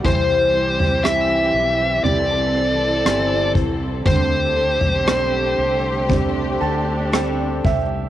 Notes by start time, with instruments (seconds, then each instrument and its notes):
Already playing: string section G3
0.04 fretless electric bass C2, steel-string acoustic guitar C3 E3 G3 C4 E4 C5, upright piano E3, string section E3 C4 G4, lead electric guitar C5, kick, floor tom
0.54 steel-string acoustic guitar G3 C4 E4 C5
0.80 floor tom
1.03 steel-string acoustic guitar E3 G3 C4 E4 C5, upright piano C4 E4 G4, lead electric guitar E5, cross-stick
1.54 fretless electric bass B1
2.03 fretless electric bass C2, steel-string acoustic guitar G3 C4 E4 C5, upright piano C4 E4 G4, string section A4, lead electric guitar D5, floor tom
2.55 steel-string acoustic guitar G3 C4 E4 C5
3.05 fretless electric bass G1, steel-string acoustic guitar C3 E3 G3 C4 E4 C5, upright piano C4 E4 G4, cross-stick
3.55 fretless electric bass C2, steel-string acoustic guitar G3 C4 E4 C5, kick, floor tom
4.05 fretless electric bass D2, steel-string acoustic guitar D3 G3 C4 G4 A4, string section D3 A3 G4, upright piano D3, lead electric guitar C5, kick, floor tom
4.56 steel-string acoustic guitar C4 G4 A4
4.81 fretless electric bass B1, floor tom
5.06 steel-string acoustic guitar D3 G3 C4 G4 A4, upright piano C4 D4 G4, cross-stick
5.58 fretless electric bass C2
6.09 steel-string acoustic guitar G3 C4 G4 A4, upright piano C4 D4 G4, string section D4, kick, floor tom
6.61 fretless electric bass D2, steel-string acoustic guitar C4 G4 A4, upright piano A5
7.12 steel-string acoustic guitar D3 G3 C4 G4 A4, upright piano C4 D4 G4 G5, cross-stick
7.65 fretless electric bass C2, steel-string acoustic guitar C4 G4 A4, upright piano E5, kick, floor tom